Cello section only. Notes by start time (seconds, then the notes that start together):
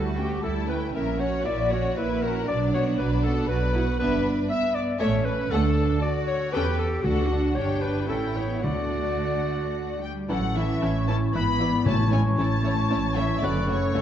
Already playing: F#4
0.43 E4
0.95 C#4
1.46 F#4
1.98 E4
2.48 D4
3.49 F#4
3.75 E4
4.00 D4
4.50 B3
5.00 C#4
5.51 D4
6.02 F#4
6.53 G4
7.04 A4
7.30 D4
8.09 E4
8.64 F#4
10.02 G3
10.29 F#3
10.57 E3
11.09 A3
11.34 B3
11.86 A3
12.12 G#3
12.38 A3
13.17 E3
13.42 D3
13.69 C#3